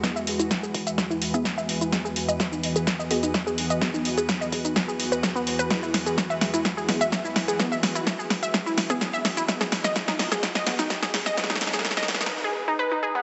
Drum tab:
HH |x---o-x-x---o-x-x---o-x-x---o-x-|x---o-x-x---o-x-x---o-x-x---o-x-|x---o-x-x---o-x-x---o-x-x---o-x-|x---o-x-x---o-x-x---o-x-x---o-x-|
SH |x-x---x-x-x---x-x-x---x-x-x---x-|x-x---x-x-x---x-x-x---x-x-x---x-|x-x---x-x-x---x-x-x---x-x-x---x-|x-x---x-x-x---x-x-x---x-x-x---x-|
SD |o-------o-------o-------o-------|o-------o-------o-------o-------|o-------o-------o-------o-------|o---o---o---o---o---o---o---o---|
BD |o-------o---o---o-------o-------|o-------o-------o-------o-------|o-------o---o---o-------o-------|o-------o-------o-------o-------|

HH |x---o-x-x---o-x-x---o-x-x---o-x-|x---o-x-x---o-x-x---o-x-x---o-x-|x---o-x-x---o-x-----------------|
SH |x-x---x-x-x---x-x-x---x-x-x---x-|x-x---x-x-x---x-x-x---x-x-x---x-|x-x---x-x-x---x-----------------|
SD |o---o---o---o---o---o---o---o---|o-o-o-o-o-o-o-o-o-o-o-o-o-o-o-o-|oooooooooooooooo----------------|
BD |o-------o---o---o-------o-------|o-------o-------o-------o-------|o-------o---o-------------------|